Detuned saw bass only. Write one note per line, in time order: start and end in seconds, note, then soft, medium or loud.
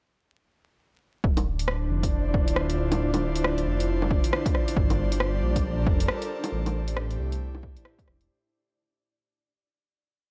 1.24 1.89 D1 medium
1.90 2.45 F1 medium
2.47 2.99 D1 loud
3.00 3.65 D1 loud
3.66 4.22 F1 loud
4.77 5.42 G1 loud
5.43 5.86 A#1 loud
5.87 6.07 F1 medium
6.52 7.18 A1 loud
7.19 7.75 C2 loud
8.08 8.28 E1 medium